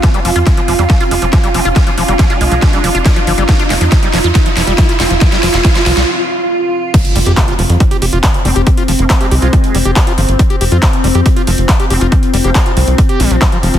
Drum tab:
CC |----------------|----------------|----------------|----------------|
HH |xxoxxxoxxxoxxxox|xxoxxxoxxxoxxxox|xxoxxxoxxxoxxxox|xxoxxxox--------|
CP |----------------|----------------|----------------|----------------|
SD |o---o---o---o---|o---o---o---o---|o-o-o-o-o-o-o-o-|oooooooo--------|
BD |o---o---o---o---|o---o---o---o---|o---o---o---o---|o---o-----------|

CC |x---------------|----------------|----------------|----------------|
HH |xxoxxxoxxxoxxxox|xxoxxxoxxxoxxxox|xxoxxxoxxxoxxxox|xxoxxxoxxxoxxxox|
CP |----x-------x---|----x-------x---|----x-------x---|----x-------x---|
SD |----------------|----------------|----------------|----------------|
BD |o---o---o---o---|o---o---o---o---|o---o---o---o---|o---o---o---o---|